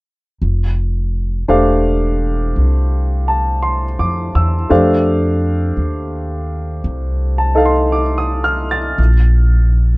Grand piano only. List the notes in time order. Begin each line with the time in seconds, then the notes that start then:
1.48 A3 D4 G4 C5 F5
3.28 A5
3.63 C6
3.99 D6
4.35 E6
4.69 A3 D4 G4 C5 F5
7.38 A5
7.55 D#4 A4 F5
7.66 C6
7.92 D6
8.18 D#6
8.44 F6
8.71 A6